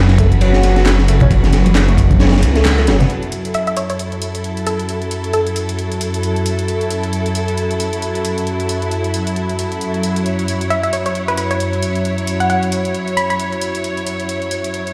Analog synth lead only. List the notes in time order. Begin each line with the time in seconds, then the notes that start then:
0.19 A3
0.41 F#3
0.76 F#4
1.08 A3
1.21 C#4
1.88 A3
1.98 A3
2.21 C#4
2.56 A3
2.78 A3
2.88 F#3
3.00 B3